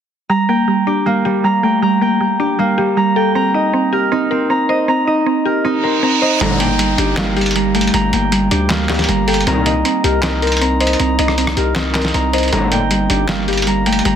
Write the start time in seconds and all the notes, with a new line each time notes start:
0.29 G3 A#5
0.49 A#3 G5
0.68 G3
0.87 D4 G4
1.06 G3 A#3
1.25 G3 G4
1.44 G3 A#5
1.63 A3 G5
1.82 G3 A#5
2.01 A#3 G5
2.21 G3
2.40 D4 G4
2.59 G3 A#3
2.78 G3 G4
2.97 G3 A#5
3.16 A4 G5
3.35 C4 A#5
3.54 D#4 D#5
3.73 C4
3.93 G4 A#4
4.12 C4 D#4
4.31 C4 A#4
4.50 C4 A#5
4.69 C5 D#5
4.88 C4 A#5
5.07 D#4 D#5
5.26 C4
5.45 G4 A#4
5.65 C4 D#4, reverse cymbal
5.84 C4 A#4
6.03 C4 A#5
6.22 C5 D#5
6.41 G1 A#1 A2 D3 G3 A#5, closed hi-hat, downlifter
6.60 A#3 G5, closed hi-hat
6.79 G3, closed hi-hat
6.98 G1 D4 G4, closed hi-hat
7.17 G3 A#3, snare, clap, closed hi-hat
7.36 G3 G4, closed hi-hat
7.41 closed hi-hat
7.46 closed hi-hat
7.51 closed hi-hat
7.56 G3 A#5, closed hi-hat
7.75 A3 G5, closed hi-hat
7.81 closed hi-hat
7.87 closed hi-hat
7.94 G1 G3 A#5, closed hi-hat
8.13 G1 A#3 G5, closed hi-hat
8.32 G3, closed hi-hat
8.51 D2 D4 G4, closed hi-hat
8.70 G3 A#3, snare, clap, closed hi-hat
8.89 G3 G4, snare, clap, closed hi-hat
8.94 closed hi-hat
8.99 snare, closed hi-hat
9.04 closed hi-hat
9.09 G1 G3 A#5, closed hi-hat
9.27 A4 G5, closed hi-hat, open hi-hat
9.34 closed hi-hat
9.41 closed hi-hat
9.47 C2 A#2 D#3 C4 A#5, closed hi-hat
9.66 D#4 D#5, closed hi-hat
9.85 C4, closed hi-hat
10.04 C2 G4 A#4, closed hi-hat
10.22 C4 D#4, snare, clap, closed hi-hat
10.42 C4 A#4, closed hi-hat
10.47 closed hi-hat
10.52 closed hi-hat
10.57 closed hi-hat
10.61 C4 A#5, closed hi-hat
10.80 C5 D#5, closed hi-hat
10.87 closed hi-hat
10.93 closed hi-hat
11.00 C2 C4 A#5, closed hi-hat
11.19 C2 D#4 D#5, closed hi-hat
11.28 cross-stick
11.38 C4, closed hi-hat
11.47 cross-stick
11.57 C2 G4 A#4, closed hi-hat
11.75 C4 D#4, snare, clap, closed hi-hat
11.94 C4 A#4, snare, clap, closed hi-hat
12.02 snare, closed hi-hat
12.08 closed hi-hat
12.14 C2 C4 A#5, closed hi-hat
12.33 C5 D#5, closed hi-hat
12.38 closed hi-hat
12.43 closed hi-hat
12.48 closed hi-hat
12.52 G1 A#1 A2 D3 G3 A#5, closed hi-hat
12.72 A#3 G5, closed hi-hat
12.91 G3, closed hi-hat
13.10 G1 D4 G4, closed hi-hat
13.28 G3 A#3, snare, clap, closed hi-hat
13.48 G3 G4, closed hi-hat
13.53 closed hi-hat
13.58 closed hi-hat
13.62 closed hi-hat
13.67 G3 A#5, closed hi-hat
13.86 A3 G5, closed hi-hat
13.93 closed hi-hat
13.99 closed hi-hat
14.05 G1 G3 A#5, closed hi-hat